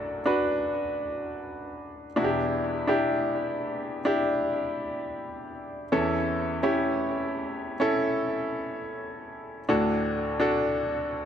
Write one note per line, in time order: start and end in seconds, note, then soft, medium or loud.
0.00 2.12 B1 soft
0.00 2.12 F#2 soft
0.00 0.26 D4 medium
0.00 0.26 F#4 medium
0.00 0.21 A4 medium
0.00 0.27 B4 medium
0.00 2.18 E5 soft
0.00 2.18 A5 soft
0.26 2.06 D4 medium
0.26 2.06 F#4 medium
0.26 2.07 B4 medium
2.16 5.89 E2 medium
2.16 5.89 B2 medium
2.16 2.83 D4 medium
2.16 2.84 E4 medium
2.16 2.23 F#4 medium
2.24 2.88 G4 medium
2.87 3.99 D4 medium
2.87 4.00 E4 medium
2.87 4.00 G4 medium
4.05 5.83 D4 medium
4.05 5.84 E4 medium
4.05 5.84 G4 medium
5.92 9.64 E2 medium
5.92 9.64 E3 medium
5.92 6.59 C#4 medium
5.92 6.59 E4 medium
5.92 6.59 A4 medium
6.63 7.74 C#4 medium
6.63 7.74 E4 medium
6.63 7.75 G4 medium
7.80 9.59 C#4 medium
7.80 9.59 E4 medium
7.80 9.60 A4 medium
9.69 11.25 D2 medium
9.69 11.25 A2 medium
9.69 10.36 D4 medium
9.69 10.36 F#4 medium
9.69 10.36 A4 medium
10.40 11.25 D4 medium
10.40 11.25 F#4 medium
10.40 11.25 A4 medium